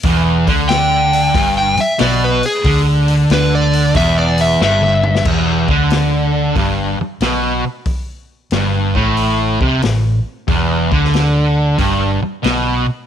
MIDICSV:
0, 0, Header, 1, 7, 480
1, 0, Start_track
1, 0, Tempo, 652174
1, 31, Time_signature, 4, 2, 24, 8
1, 9618, End_track
2, 0, Start_track
2, 0, Title_t, "Electric slide guitar"
2, 0, Program_c, 0, 29
2, 507, Note_on_c, 0, 79, 105
2, 1127, Note_off_c, 0, 79, 0
2, 1162, Note_on_c, 0, 79, 80
2, 1310, Note_off_c, 0, 79, 0
2, 1327, Note_on_c, 0, 76, 82
2, 1472, Note_off_c, 0, 76, 0
2, 1482, Note_on_c, 0, 74, 102
2, 1629, Note_off_c, 0, 74, 0
2, 1650, Note_on_c, 0, 71, 90
2, 1793, Note_off_c, 0, 71, 0
2, 1809, Note_on_c, 0, 68, 105
2, 2056, Note_off_c, 0, 68, 0
2, 2453, Note_on_c, 0, 71, 96
2, 2594, Note_off_c, 0, 71, 0
2, 2612, Note_on_c, 0, 74, 93
2, 2909, Note_off_c, 0, 74, 0
2, 2918, Note_on_c, 0, 76, 90
2, 3067, Note_off_c, 0, 76, 0
2, 3075, Note_on_c, 0, 74, 76
2, 3225, Note_off_c, 0, 74, 0
2, 3246, Note_on_c, 0, 76, 80
2, 3391, Note_off_c, 0, 76, 0
2, 3414, Note_on_c, 0, 76, 103
2, 3865, Note_off_c, 0, 76, 0
2, 9618, End_track
3, 0, Start_track
3, 0, Title_t, "Distorted electric guitar"
3, 0, Program_c, 1, 30
3, 37, Note_on_c, 1, 40, 109
3, 343, Note_off_c, 1, 40, 0
3, 356, Note_on_c, 1, 50, 100
3, 986, Note_off_c, 1, 50, 0
3, 994, Note_on_c, 1, 43, 104
3, 1300, Note_off_c, 1, 43, 0
3, 1466, Note_on_c, 1, 47, 105
3, 1776, Note_off_c, 1, 47, 0
3, 1951, Note_on_c, 1, 50, 107
3, 2423, Note_off_c, 1, 50, 0
3, 2437, Note_on_c, 1, 50, 119
3, 2906, Note_off_c, 1, 50, 0
3, 2918, Note_on_c, 1, 40, 95
3, 3398, Note_off_c, 1, 40, 0
3, 3398, Note_on_c, 1, 43, 99
3, 3867, Note_off_c, 1, 43, 0
3, 3878, Note_on_c, 1, 40, 101
3, 4182, Note_off_c, 1, 40, 0
3, 4193, Note_on_c, 1, 50, 96
3, 4825, Note_off_c, 1, 50, 0
3, 4830, Note_on_c, 1, 43, 93
3, 5139, Note_off_c, 1, 43, 0
3, 5311, Note_on_c, 1, 47, 89
3, 5620, Note_off_c, 1, 47, 0
3, 6277, Note_on_c, 1, 43, 105
3, 6584, Note_off_c, 1, 43, 0
3, 6587, Note_on_c, 1, 45, 91
3, 7060, Note_off_c, 1, 45, 0
3, 7077, Note_on_c, 1, 48, 95
3, 7229, Note_off_c, 1, 48, 0
3, 7235, Note_on_c, 1, 45, 66
3, 7489, Note_off_c, 1, 45, 0
3, 7711, Note_on_c, 1, 40, 101
3, 8022, Note_off_c, 1, 40, 0
3, 8037, Note_on_c, 1, 50, 99
3, 8670, Note_off_c, 1, 50, 0
3, 8673, Note_on_c, 1, 43, 86
3, 8984, Note_off_c, 1, 43, 0
3, 9148, Note_on_c, 1, 47, 90
3, 9461, Note_off_c, 1, 47, 0
3, 9618, End_track
4, 0, Start_track
4, 0, Title_t, "Fingered electric bass"
4, 0, Program_c, 2, 33
4, 30, Note_on_c, 2, 28, 80
4, 327, Note_off_c, 2, 28, 0
4, 350, Note_on_c, 2, 38, 108
4, 958, Note_off_c, 2, 38, 0
4, 993, Note_on_c, 2, 31, 86
4, 1287, Note_off_c, 2, 31, 0
4, 1473, Note_on_c, 2, 35, 91
4, 1767, Note_off_c, 2, 35, 0
4, 1948, Note_on_c, 2, 38, 95
4, 2397, Note_off_c, 2, 38, 0
4, 2431, Note_on_c, 2, 38, 100
4, 2878, Note_off_c, 2, 38, 0
4, 2906, Note_on_c, 2, 28, 91
4, 3356, Note_off_c, 2, 28, 0
4, 3394, Note_on_c, 2, 31, 99
4, 3840, Note_off_c, 2, 31, 0
4, 3867, Note_on_c, 2, 28, 74
4, 4164, Note_off_c, 2, 28, 0
4, 4186, Note_on_c, 2, 38, 95
4, 4797, Note_off_c, 2, 38, 0
4, 4826, Note_on_c, 2, 31, 85
4, 5124, Note_off_c, 2, 31, 0
4, 5303, Note_on_c, 2, 35, 81
4, 5603, Note_off_c, 2, 35, 0
4, 6269, Note_on_c, 2, 31, 86
4, 6567, Note_off_c, 2, 31, 0
4, 6589, Note_on_c, 2, 33, 85
4, 7041, Note_off_c, 2, 33, 0
4, 7071, Note_on_c, 2, 36, 93
4, 7220, Note_off_c, 2, 36, 0
4, 7230, Note_on_c, 2, 33, 75
4, 7528, Note_off_c, 2, 33, 0
4, 7716, Note_on_c, 2, 28, 78
4, 8012, Note_off_c, 2, 28, 0
4, 8039, Note_on_c, 2, 38, 95
4, 8647, Note_off_c, 2, 38, 0
4, 8678, Note_on_c, 2, 31, 81
4, 8973, Note_off_c, 2, 31, 0
4, 9154, Note_on_c, 2, 35, 89
4, 9452, Note_off_c, 2, 35, 0
4, 9618, End_track
5, 0, Start_track
5, 0, Title_t, "Muted distorted electric guitar strokes"
5, 1308, Note_on_c, 9, 29, 62
5, 1381, Note_off_c, 9, 29, 0
5, 5159, Note_on_c, 9, 29, 52
5, 5232, Note_off_c, 9, 29, 0
5, 8998, Note_on_c, 9, 29, 56
5, 9071, Note_off_c, 9, 29, 0
5, 9618, End_track
6, 0, Start_track
6, 0, Title_t, "Muted fingered electric bass strokes"
6, 1313, Note_on_c, 9, 29, 42
6, 1387, Note_off_c, 9, 29, 0
6, 5151, Note_on_c, 9, 29, 41
6, 5224, Note_off_c, 9, 29, 0
6, 8996, Note_on_c, 9, 29, 41
6, 9070, Note_off_c, 9, 29, 0
6, 9618, End_track
7, 0, Start_track
7, 0, Title_t, "Drums"
7, 23, Note_on_c, 9, 46, 82
7, 27, Note_on_c, 9, 36, 109
7, 96, Note_off_c, 9, 46, 0
7, 101, Note_off_c, 9, 36, 0
7, 348, Note_on_c, 9, 36, 101
7, 348, Note_on_c, 9, 46, 57
7, 421, Note_off_c, 9, 36, 0
7, 422, Note_off_c, 9, 46, 0
7, 506, Note_on_c, 9, 46, 72
7, 518, Note_on_c, 9, 38, 101
7, 580, Note_off_c, 9, 46, 0
7, 592, Note_off_c, 9, 38, 0
7, 832, Note_on_c, 9, 46, 53
7, 906, Note_off_c, 9, 46, 0
7, 990, Note_on_c, 9, 36, 101
7, 992, Note_on_c, 9, 46, 69
7, 1063, Note_off_c, 9, 36, 0
7, 1066, Note_off_c, 9, 46, 0
7, 1305, Note_on_c, 9, 46, 54
7, 1378, Note_off_c, 9, 46, 0
7, 1463, Note_on_c, 9, 46, 81
7, 1474, Note_on_c, 9, 38, 112
7, 1536, Note_off_c, 9, 46, 0
7, 1548, Note_off_c, 9, 38, 0
7, 1788, Note_on_c, 9, 46, 56
7, 1861, Note_off_c, 9, 46, 0
7, 1946, Note_on_c, 9, 36, 106
7, 1946, Note_on_c, 9, 46, 76
7, 2019, Note_off_c, 9, 46, 0
7, 2020, Note_off_c, 9, 36, 0
7, 2267, Note_on_c, 9, 46, 56
7, 2340, Note_off_c, 9, 46, 0
7, 2428, Note_on_c, 9, 46, 74
7, 2440, Note_on_c, 9, 38, 107
7, 2501, Note_off_c, 9, 46, 0
7, 2513, Note_off_c, 9, 38, 0
7, 2748, Note_on_c, 9, 46, 56
7, 2822, Note_off_c, 9, 46, 0
7, 2904, Note_on_c, 9, 36, 104
7, 2904, Note_on_c, 9, 46, 77
7, 2978, Note_off_c, 9, 36, 0
7, 2978, Note_off_c, 9, 46, 0
7, 3221, Note_on_c, 9, 46, 56
7, 3295, Note_off_c, 9, 46, 0
7, 3395, Note_on_c, 9, 38, 66
7, 3469, Note_off_c, 9, 38, 0
7, 3544, Note_on_c, 9, 47, 61
7, 3617, Note_off_c, 9, 47, 0
7, 3705, Note_on_c, 9, 45, 90
7, 3779, Note_off_c, 9, 45, 0
7, 3793, Note_on_c, 9, 38, 80
7, 3865, Note_on_c, 9, 36, 93
7, 3866, Note_on_c, 9, 49, 87
7, 3867, Note_off_c, 9, 38, 0
7, 3939, Note_off_c, 9, 36, 0
7, 3940, Note_off_c, 9, 49, 0
7, 4184, Note_on_c, 9, 36, 100
7, 4257, Note_off_c, 9, 36, 0
7, 4344, Note_on_c, 9, 46, 42
7, 4355, Note_on_c, 9, 38, 100
7, 4417, Note_off_c, 9, 46, 0
7, 4429, Note_off_c, 9, 38, 0
7, 4825, Note_on_c, 9, 36, 90
7, 4828, Note_on_c, 9, 46, 43
7, 4898, Note_off_c, 9, 36, 0
7, 4902, Note_off_c, 9, 46, 0
7, 5303, Note_on_c, 9, 46, 49
7, 5314, Note_on_c, 9, 38, 97
7, 5376, Note_off_c, 9, 46, 0
7, 5388, Note_off_c, 9, 38, 0
7, 5781, Note_on_c, 9, 46, 44
7, 5784, Note_on_c, 9, 36, 96
7, 5855, Note_off_c, 9, 46, 0
7, 5857, Note_off_c, 9, 36, 0
7, 6260, Note_on_c, 9, 46, 43
7, 6272, Note_on_c, 9, 38, 93
7, 6334, Note_off_c, 9, 46, 0
7, 6346, Note_off_c, 9, 38, 0
7, 6588, Note_on_c, 9, 36, 94
7, 6661, Note_off_c, 9, 36, 0
7, 6749, Note_on_c, 9, 46, 48
7, 6822, Note_off_c, 9, 46, 0
7, 7071, Note_on_c, 9, 36, 92
7, 7145, Note_off_c, 9, 36, 0
7, 7229, Note_on_c, 9, 46, 52
7, 7241, Note_on_c, 9, 38, 107
7, 7303, Note_off_c, 9, 46, 0
7, 7315, Note_off_c, 9, 38, 0
7, 7713, Note_on_c, 9, 36, 105
7, 7714, Note_on_c, 9, 46, 50
7, 7787, Note_off_c, 9, 36, 0
7, 7788, Note_off_c, 9, 46, 0
7, 8035, Note_on_c, 9, 36, 96
7, 8109, Note_off_c, 9, 36, 0
7, 8129, Note_on_c, 9, 38, 29
7, 8196, Note_on_c, 9, 46, 48
7, 8203, Note_off_c, 9, 38, 0
7, 8207, Note_on_c, 9, 38, 106
7, 8269, Note_off_c, 9, 46, 0
7, 8281, Note_off_c, 9, 38, 0
7, 8673, Note_on_c, 9, 46, 50
7, 8674, Note_on_c, 9, 36, 94
7, 8747, Note_off_c, 9, 36, 0
7, 8747, Note_off_c, 9, 46, 0
7, 9157, Note_on_c, 9, 46, 48
7, 9169, Note_on_c, 9, 38, 104
7, 9231, Note_off_c, 9, 46, 0
7, 9242, Note_off_c, 9, 38, 0
7, 9618, End_track
0, 0, End_of_file